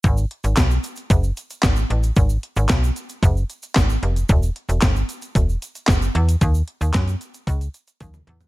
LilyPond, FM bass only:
\new Staff \with { instrumentName = "FM bass" } { \clef bass \time 4/4 \key gis \minor \tempo 4 = 113 gis,,8 r16 gis,,16 b,,8 r8 fis,,8 r8 gis,,8 a,,8 | gis,,8 r16 gis,,16 b,,8 r8 fis,,8 r8 gis,,8 eis,,8 | e,,8 r16 e,,16 g,,8 r8 e,,8 r8 fis,,8 e,8 | dis,8 r16 dis,16 fis,8 r8 cis,8 r8 dis,8 e,8 | }